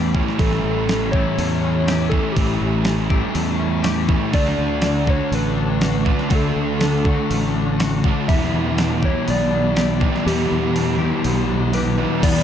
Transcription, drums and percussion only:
0.15 kick medium
0.28 snare soft
0.39 kick loud
0.39 open hi-hat medium
0.53 snare soft
0.89 snare loud
0.89 open hi-hat soft
1.13 kick medium
1.39 open hi-hat soft
1.88 snare loud
1.88 open hi-hat medium
2.12 kick medium
2.37 kick loud
2.37 open hi-hat medium
2.85 snare loud
2.85 open hi-hat medium
3.10 kick medium
3.35 open hi-hat medium
3.84 snare loud
3.84 open hi-hat medium
4.09 kick medium
4.33 kick loud
4.33 open hi-hat medium
4.47 snare soft
4.82 snare loud
4.82 open hi-hat medium
5.07 kick medium
5.33 open hi-hat soft
5.81 snare loud
5.81 open hi-hat medium
6.06 kick medium
6.19 snare soft
6.30 kick loud
6.30 open hi-hat medium
6.81 snare loud
6.81 open hi-hat medium
7.05 kick medium
7.31 open hi-hat medium
7.80 snare loud
7.80 open hi-hat medium
8.04 kick medium
8.29 kick loud
8.29 open hi-hat medium
8.43 snare soft
8.78 snare loud
8.78 open hi-hat medium
9.03 kick medium
9.28 open hi-hat soft
9.76 snare loud
9.76 open hi-hat medium
10.01 kick medium
10.16 snare soft
10.28 open hi-hat medium
10.76 open hi-hat medium
11.24 open hi-hat medium
11.73 open hi-hat medium
12.23 kick loud
12.23 open hi-hat medium
12.23 crash loud

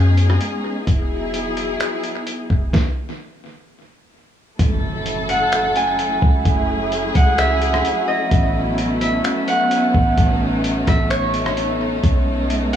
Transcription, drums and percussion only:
0.17 closed hi-hat medium
0.30 cross-stick medium
0.41 closed hi-hat medium
0.87 kick loud
0.87 closed hi-hat medium
1.34 closed hi-hat medium
1.57 closed hi-hat medium
1.80 finger snap loud
1.80 closed hi-hat medium
2.04 closed hi-hat medium
2.27 closed hi-hat medium
2.50 kick loud
2.73 kick loud
2.73 snare medium
4.59 kick loud
4.59 closed hi-hat medium
5.06 closed hi-hat medium
5.29 closed hi-hat medium
5.52 finger snap loud
5.52 closed hi-hat medium
5.76 closed hi-hat medium
5.99 closed hi-hat medium
6.22 kick loud
6.45 kick loud
6.45 closed hi-hat medium
6.92 closed hi-hat medium
7.15 kick loud
7.15 closed hi-hat medium
7.38 finger snap loud
7.38 closed hi-hat medium
7.62 closed hi-hat medium
7.74 cross-stick medium
7.85 closed hi-hat medium
8.31 kick loud
8.31 closed hi-hat medium
8.78 closed hi-hat medium
9.01 closed hi-hat medium
9.24 finger snap loud
9.24 closed hi-hat medium
9.48 closed hi-hat medium
9.71 closed hi-hat medium
9.94 kick medium
10.18 kick loud
10.18 closed hi-hat medium
10.64 closed hi-hat medium
10.87 kick medium
10.87 cross-stick loud
10.87 closed hi-hat medium
11.10 finger snap loud
11.10 closed hi-hat medium
11.34 closed hi-hat medium
11.46 cross-stick medium
11.57 closed hi-hat medium
12.04 kick loud
12.04 closed hi-hat medium
12.50 closed hi-hat medium

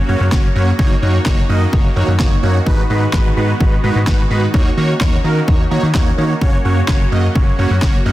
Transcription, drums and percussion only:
0.32 kick loud
0.32 snare medium
0.32 clap loud
0.79 kick loud
1.26 kick loud
1.26 snare medium
1.26 clap loud
1.73 kick loud
2.20 kick loud
2.20 snare medium
2.20 clap medium
2.66 kick loud
3.13 kick loud
3.13 snare medium
3.13 clap loud
3.60 kick loud
4.07 kick loud
4.07 snare medium
4.07 clap medium
4.54 kick loud
5.01 kick loud
5.01 snare medium
5.01 clap loud
5.48 kick loud
5.95 kick loud
5.95 snare medium
5.95 clap medium
6.41 kick loud
6.88 kick loud
6.88 snare medium
6.88 clap loud
7.35 kick loud
7.82 kick loud
7.82 snare medium
7.82 clap loud

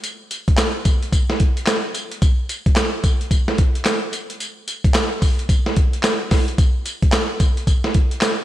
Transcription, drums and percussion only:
0.04 closed hi-hat medium
0.04 tambourine medium
0.31 closed hi-hat medium
0.31 tambourine medium
0.48 kick loud
0.48 closed hi-hat soft
0.57 snare loud
0.57 clap loud
0.57 closed hi-hat medium
0.57 tambourine loud
0.85 kick medium
0.85 closed hi-hat medium
0.85 tambourine medium
1.02 closed hi-hat soft
1.12 kick medium
1.12 closed hi-hat medium
1.12 tambourine medium
1.30 snare medium
1.40 kick medium
1.40 closed hi-hat medium
1.57 closed hi-hat soft
1.66 snare loud
1.66 clap medium
1.66 closed hi-hat medium
1.66 tambourine loud
1.94 closed hi-hat medium
1.94 tambourine medium
2.12 closed hi-hat medium
2.22 kick loud
2.22 closed hi-hat medium
2.22 tambourine medium
2.49 closed hi-hat medium
2.49 tambourine medium
2.66 kick loud
2.66 closed hi-hat soft
2.76 snare loud
2.76 clap loud
2.76 closed hi-hat medium
2.76 tambourine loud
3.04 kick medium
3.04 closed hi-hat medium
3.04 tambourine medium
3.21 closed hi-hat soft
3.31 kick medium
3.31 closed hi-hat medium
3.31 tambourine medium
3.48 snare medium
3.58 kick loud
3.58 closed hi-hat medium
3.75 closed hi-hat medium
3.85 snare loud
3.85 clap medium
3.85 closed hi-hat medium
3.85 tambourine medium
4.13 closed hi-hat medium
4.13 tambourine medium
4.30 closed hi-hat medium
4.40 closed hi-hat medium
4.40 tambourine medium
4.68 closed hi-hat medium
4.68 tambourine medium
4.84 kick loud
4.84 closed hi-hat medium
4.94 snare loud
4.94 clap loud
4.94 closed hi-hat medium
4.94 tambourine loud
5.22 kick medium
5.22 open hi-hat medium
5.22 tambourine medium
5.39 closed hi-hat soft
5.49 kick medium
5.49 closed hi-hat medium
5.49 tambourine medium
5.66 snare medium
5.76 kick loud
5.76 closed hi-hat medium
5.93 closed hi-hat medium
6.03 snare loud
6.03 clap medium
6.03 closed hi-hat medium
6.03 tambourine loud
6.31 kick loud
6.31 snare medium
6.31 open hi-hat medium
6.31 tambourine medium
6.48 closed hi-hat medium
6.58 kick loud
6.58 closed hi-hat medium
6.58 tambourine medium
6.86 closed hi-hat medium
6.86 tambourine medium
7.02 kick loud
7.02 closed hi-hat soft
7.12 snare loud
7.12 clap loud
7.12 closed hi-hat medium
7.12 tambourine medium
7.40 kick medium
7.40 closed hi-hat medium
7.40 tambourine medium
7.57 closed hi-hat soft
7.67 kick medium
7.67 closed hi-hat medium
7.67 tambourine medium
7.84 snare medium
7.94 kick loud
7.94 closed hi-hat medium
8.11 closed hi-hat medium
8.21 snare loud
8.21 clap medium
8.21 closed hi-hat medium
8.21 tambourine loud

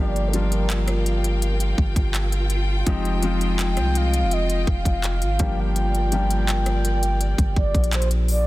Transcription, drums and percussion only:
0.16 closed hi-hat soft
0.33 closed hi-hat medium
0.52 closed hi-hat medium
0.70 clap loud
0.70 closed hi-hat medium
0.88 cross-stick loud
0.88 closed hi-hat medium
1.06 closed hi-hat medium
1.24 closed hi-hat medium
1.42 closed hi-hat medium
1.60 closed hi-hat medium
1.78 kick medium
1.96 kick medium
1.96 closed hi-hat medium
2.14 clap loud
2.14 closed hi-hat medium
2.32 closed hi-hat medium
2.50 closed hi-hat medium
2.87 kick loud
2.87 closed hi-hat medium
3.05 closed hi-hat soft
3.23 closed hi-hat medium
3.41 closed hi-hat medium
3.59 clap loud
3.59 closed hi-hat medium
3.77 cross-stick medium
3.77 closed hi-hat medium
3.95 closed hi-hat medium
4.14 closed hi-hat medium
4.31 closed hi-hat medium
4.50 closed hi-hat medium
4.67 kick medium
4.85 kick medium
4.85 closed hi-hat medium
5.04 clap loud
5.04 closed hi-hat medium
5.22 closed hi-hat medium
5.39 kick loud
5.39 closed hi-hat medium
5.76 closed hi-hat medium
5.95 closed hi-hat soft
6.12 closed hi-hat medium
6.30 closed hi-hat medium
6.48 clap loud
6.48 closed hi-hat medium
6.66 cross-stick medium
6.66 closed hi-hat medium
6.85 closed hi-hat medium
7.03 closed hi-hat medium
7.21 closed hi-hat medium
7.38 kick loud
7.38 closed hi-hat medium
7.56 kick medium
7.75 kick medium
7.75 closed hi-hat soft
7.84 closed hi-hat medium
7.93 clap loud
7.93 closed hi-hat medium
8.02 closed hi-hat medium
8.11 closed hi-hat medium
8.28 open hi-hat medium

